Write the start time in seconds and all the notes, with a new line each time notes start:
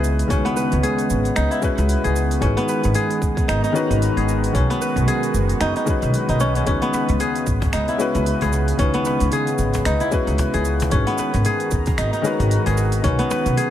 Already playing: C#2 C#3 D#3 G#3 B3 C#4 E4 F#4 G#4 B4
0.04 shaker
0.19 open hi-hat, shaker
0.27 C#2 D#3 G#3 C#4 F#4, kick, open hi-hat, shaker
0.32 B4
0.45 B3, open hi-hat
0.56 B4, shaker
0.72 C#2, open hi-hat, shaker
0.83 G#4, open hi-hat, shaker
0.99 open hi-hat, shaker
1.10 G#1, shaker
1.25 open hi-hat, shaker
1.36 C#2 D#4, finger snap, open hi-hat, shaker
1.51 E4, open hi-hat, shaker
1.61 G#3 C#4 F#4 B4, kick, shaker
1.78 C#2, open hi-hat, shaker
1.89 open hi-hat, shaker
2.04 C#2 G#4, open hi-hat, shaker
2.16 shaker
2.31 open hi-hat, shaker
2.40 G#1 D#3 G#3 C#4 F#4, kick, open hi-hat, shaker
2.44 B4
2.57 B3, open hi-hat
2.68 B4, shaker
2.84 G#1, open hi-hat, shaker
2.95 G#4, open hi-hat, shaker
3.11 open hi-hat, shaker
3.22 D#2, kick, shaker
3.37 F#4 A#5, kick, open hi-hat, shaker
3.48 G#1 D#4, finger snap, open hi-hat, shaker
3.64 D#4, open hi-hat, shaker
3.72 D#3 G#3 C#4 F#4 B4, shaker
3.90 G#1, open hi-hat, shaker
4.02 open hi-hat, shaker
4.16 G#1 G#4, open hi-hat
4.29 shaker
4.44 open hi-hat, shaker
4.52 B1 D#3 G#3 C#4 F#4 B4, kick, open hi-hat, shaker
4.70 B3, open hi-hat
4.82 B4, shaker
4.96 B1, open hi-hat, shaker
5.08 G#4, open hi-hat, shaker
5.23 open hi-hat, shaker
5.34 F#1, shaker
5.49 B4, open hi-hat, shaker
5.61 F#1 D#4, finger snap, open hi-hat, shaker
5.76 D#4, open hi-hat, shaker
5.85 D#3 G#3 C#4 F#4 B4, kick, shaker
6.02 B1, open hi-hat, shaker
6.14 open hi-hat, shaker
6.29 B1 D#4, open hi-hat, shaker
6.40 C#4, shaker
6.55 C#4, open hi-hat, shaker
6.65 C#2 C#3 D#3 G#3 C#4 F#4, kick, open hi-hat, shaker
6.69 B4
6.82 B3, open hi-hat
6.93 B4, cajon slap, shaker
7.09 C#2, open hi-hat, shaker
7.20 G#4, open hi-hat, shaker
7.35 open hi-hat, shaker
7.47 G#1, kick, shaker
7.62 cajon bass, kick, open hi-hat, shaker
7.73 C#2 D#4, finger snap, open hi-hat, shaker
7.88 E4, open hi-hat, shaker
7.98 G#3 C#4 F#4 B4, cajon slap, shaker
8.15 C#2, cajon slap, open hi-hat, shaker
8.26 open hi-hat, shaker
8.41 C#2 G#4, cajon bass, open hi-hat
8.53 cajon slap, shaker
8.68 open hi-hat, shaker
8.77 C#2 D#3 G#3 C#4 F#4 B4, kick, open hi-hat, shaker
8.94 B3, open hi-hat
9.05 B4, cajon slap, shaker
9.20 C#2, open hi-hat, shaker
9.32 G#4, open hi-hat, shaker
9.47 cajon slap, open hi-hat, shaker
9.58 G#1, shaker
9.74 cajon bass, open hi-hat, shaker
9.85 C#2 D#4, finger snap, open hi-hat, shaker
10.00 E4, cajon slap, open hi-hat, shaker
10.11 G#3 C#4 F#4 B4, kick, shaker
10.27 C#2, open hi-hat, shaker
10.38 cajon bass, open hi-hat, shaker
10.54 C#2 G#4, cajon slap, open hi-hat, shaker
10.65 shaker
10.80 cajon bass, cajon slap, open hi-hat, shaker
10.90 G#1 D#3 G#3 C#4 F#4, kick, open hi-hat, shaker
10.94 B4
11.07 B3, open hi-hat
11.18 B4, cajon slap, shaker
11.34 G#1, open hi-hat, shaker
11.45 F#4 G#4, open hi-hat, shaker
11.58 A#5, open hi-hat, shaker
11.71 D#2, kick, shaker
11.86 kick, cajon bass, open hi-hat, shaker
11.98 G#1 D#4, finger snap, open hi-hat, shaker
12.13 D#4, open hi-hat, shaker
12.22 D#3 G#3 C#4 F#4, cajon slap, shaker
12.26 B4
12.40 G#1, cajon slap, open hi-hat, shaker
12.51 open hi-hat, shaker
12.66 G#1 G#4, cajon bass, open hi-hat
12.77 cajon slap, shaker
12.92 open hi-hat, shaker
13.02 B1 D#3 G#3 C#4 F#4, kick, open hi-hat, shaker
13.06 B4
13.19 B3, open hi-hat
13.31 B4, cajon slap, shaker
13.46 B1, open hi-hat, shaker
13.57 G#4, open hi-hat, shaker